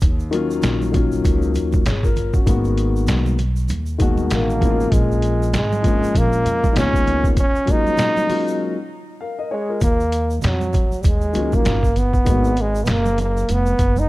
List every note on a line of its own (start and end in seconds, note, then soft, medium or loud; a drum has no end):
0.01 0.60 D#2 loud
0.01 kick loud
0.01 closed hi-hat medium
0.01 shaker medium
0.20 shaker soft
0.31 0.90 D#3 medium
0.31 0.91 F#3 medium
0.31 0.92 A#3 medium
0.31 0.93 C#4 medium
0.31 0.94 F4 medium
0.31 closed hi-hat medium
0.31 shaker soft
0.51 shaker soft
0.62 1.22 A#1 medium
0.62 snare loud
0.62 closed hi-hat medium
0.62 low conga medium
0.62 shaker medium
0.82 high conga medium
0.82 shaker soft
0.92 1.80 D#3 medium
0.92 1.80 F#3 medium
0.92 1.81 A#3 medium
0.92 1.81 C#4 medium
0.92 1.82 F4 medium
0.92 kick medium
0.92 closed hi-hat medium
0.92 low conga medium
0.92 shaker soft
1.12 shaker soft
1.25 1.54 C#2 medium
1.25 kick loud
1.25 closed hi-hat medium
1.25 high conga soft
1.25 shaker medium
1.42 shaker soft
1.54 1.84 D#2 medium
1.54 closed hi-hat medium
1.54 shaker soft
1.73 kick medium
1.73 high conga medium
1.73 shaker soft
1.86 2.44 G1 medium
1.86 2.03 G#4 medium
1.86 2.03 C#5 medium
1.86 snare loud
1.86 closed hi-hat medium
1.86 shaker medium
2.03 2.33 F4 medium
2.03 2.33 A#4 medium
2.03 kick medium
2.03 shaker soft
2.16 closed hi-hat medium
2.16 low conga medium
2.16 shaker soft
2.34 2.64 C#4 medium
2.34 2.48 F#4 medium
2.34 kick loud
2.34 shaker soft
2.46 3.05 G#1 medium
2.46 3.33 D#3 medium
2.46 3.34 G#3 medium
2.46 3.34 A#3 medium
2.46 3.35 B3 medium
2.46 3.35 F#4 medium
2.46 kick loud
2.46 closed hi-hat medium
2.46 shaker medium
2.64 shaker soft
2.78 closed hi-hat medium
2.78 shaker soft
2.96 shaker soft
3.07 3.66 B1 medium
3.07 snare loud
3.07 closed hi-hat medium
3.07 low conga medium
3.07 shaker medium
3.26 high conga medium
3.26 shaker soft
3.38 closed hi-hat medium
3.38 low conga medium
3.38 shaker soft
3.56 shaker soft
3.69 4.28 D#2 loud
3.69 closed hi-hat medium
3.69 high conga soft
3.69 shaker medium
3.86 shaker soft
3.98 4.87 B2 medium
3.98 4.86 D#3 medium
3.98 4.59 G#3 medium
3.98 4.61 A#3 medium
3.98 4.88 F#4 medium
3.98 kick loud
3.98 closed hi-hat medium
3.98 shaker soft
4.18 high conga medium
4.18 shaker soft
4.30 4.89 A1 medium
4.30 4.95 A#3 medium
4.30 snare loud
4.30 closed hi-hat medium
4.30 shaker medium
4.50 shaker soft
4.60 5.48 F3 medium
4.60 5.48 G#3 medium
4.60 5.49 A#3 medium
4.60 5.49 C#4 medium
4.60 4.70 E4 medium
4.60 kick medium
4.60 closed hi-hat medium
4.60 low conga medium
4.60 shaker soft
4.70 5.53 F4 medium
4.80 shaker soft
4.92 5.55 A#1 loud
4.92 5.54 G#3 medium
4.92 kick loud
4.92 closed hi-hat medium
4.92 shaker medium
5.12 shaker soft
5.22 closed hi-hat medium
5.22 shaker soft
5.42 shaker soft
5.53 6.00 G#1 medium
5.53 6.19 G#3 medium
5.53 snare loud
5.53 closed hi-hat medium
5.53 low conga medium
5.53 shaker medium
5.73 high conga medium
5.73 shaker soft
5.83 6.70 F3 medium
5.83 6.70 G#3 medium
5.83 6.71 A#3 medium
5.83 6.71 C#4 medium
5.83 6.72 F4 medium
5.83 kick medium
5.83 closed hi-hat medium
5.83 low conga medium
5.83 shaker soft
6.03 muted upright bass stroke soft
6.03 shaker soft
6.15 6.44 A#1 loud
6.15 6.77 A#3 loud
6.15 kick medium
6.15 closed hi-hat medium
6.15 high conga soft
6.15 shaker medium
6.33 shaker soft
6.45 6.74 F2 medium
6.45 closed hi-hat medium
6.45 shaker soft
6.64 kick medium
6.64 high conga medium
6.64 shaker soft
6.73 7.34 C#2 medium
6.73 7.36 D#3 medium
6.73 7.36 G#3 medium
6.73 7.37 A#3 medium
6.73 7.37 B3 medium
6.73 7.37 F4 medium
6.73 snare loud
6.73 closed hi-hat loud
6.73 shaker medium
6.78 7.34 C#4 loud
6.93 kick medium
6.93 shaker medium
7.07 closed hi-hat medium
7.07 low conga medium
7.07 shaker soft
7.24 kick medium
7.24 shaker soft
7.37 7.72 C#4 loud
7.37 kick loud
7.37 closed hi-hat medium
7.37 shaker medium
7.55 shaker soft
7.66 8.25 F#3 medium
7.66 8.26 G#3 medium
7.66 8.27 A#3 medium
7.66 8.28 C#4 medium
7.66 8.29 F4 medium
7.66 kick medium
7.66 closed hi-hat medium
7.66 shaker soft
7.71 8.92 D#4 loud
7.87 high conga soft
7.87 shaker soft
7.97 snare loud
7.97 closed hi-hat medium
7.97 low conga medium
7.97 shaker medium
8.17 high conga medium
8.17 shaker soft
8.27 8.73 F#3 medium
8.27 8.73 G#3 medium
8.27 8.74 A#3 medium
8.27 8.74 C#4 medium
8.27 8.74 F4 medium
8.27 open hi-hat soft
8.27 low conga medium
8.27 shaker soft
8.48 shaker soft
9.21 9.38 A#4 medium
9.21 9.38 F5 medium
9.39 9.51 A#4 medium
9.39 9.50 D#5 medium
9.51 9.80 G#3 medium
9.51 9.68 G#4 medium
9.51 9.68 C#5 medium
9.69 9.98 F4 soft
9.69 9.98 A#4 medium
9.81 10.40 D#2 loud
9.81 10.40 A#3 medium
9.81 kick loud
9.81 closed hi-hat medium
9.81 shaker medium
10.00 shaker soft
10.12 closed hi-hat medium
10.12 shaker soft
10.30 shaker soft
10.42 10.90 F2 medium
10.42 11.03 F#3 medium
10.42 snare loud
10.42 closed hi-hat medium
10.42 low conga medium
10.42 shaker medium
10.61 high conga medium
10.61 shaker soft
10.73 kick medium
10.73 closed hi-hat medium
10.73 low conga medium
10.73 shaker soft
10.92 muted upright bass stroke soft
10.92 shaker soft
11.01 11.33 D#2 medium
11.01 11.08 G3 medium
11.01 kick loud
11.01 closed hi-hat medium
11.01 high conga soft
11.01 shaker medium
11.07 11.56 G#3 loud
11.21 shaker soft
11.33 11.64 C#2 medium
11.33 11.79 D#3 medium
11.33 11.79 F#3 medium
11.33 11.80 A#3 medium
11.33 11.80 C#4 medium
11.33 11.81 F4 medium
11.33 closed hi-hat medium
11.33 shaker soft
11.52 12.00 A#3 medium
11.52 kick medium
11.52 high conga medium
11.52 shaker soft
11.65 12.24 G1 medium
11.65 snare loud
11.65 closed hi-hat loud
11.65 shaker medium
11.83 kick medium
11.83 shaker soft
11.96 12.62 B3 loud
11.96 closed hi-hat medium
11.96 low conga medium
11.96 shaker soft
12.13 kick medium
12.13 shaker soft
12.25 12.85 G#1 medium
12.25 12.49 D#3 medium
12.25 12.49 G#3 medium
12.25 12.50 A#3 medium
12.25 12.50 B3 medium
12.25 12.51 F#4 medium
12.25 kick loud
12.25 closed hi-hat medium
12.25 shaker medium
12.45 shaker soft
12.56 closed hi-hat medium
12.56 shaker soft
12.61 12.86 G#3 loud
12.75 shaker soft
12.84 12.92 B3 medium
12.84 snare loud
12.84 closed hi-hat medium
12.84 low conga medium
12.84 shaker medium
12.88 13.46 F#1 medium
12.88 13.20 A#3 loud
13.06 high conga medium
13.06 shaker soft
13.18 13.53 A#3 medium
13.18 closed hi-hat medium
13.18 low conga medium
13.18 shaker soft
13.37 shaker soft
13.49 13.78 F1 medium
13.49 14.01 B3 loud
13.49 closed hi-hat medium
13.49 high conga soft
13.49 shaker medium
13.66 shaker soft
13.79 14.08 F#1 medium
13.79 kick medium
13.79 closed hi-hat medium
13.79 shaker soft
13.96 14.09 D#4 loud
13.96 high conga medium
13.96 shaker medium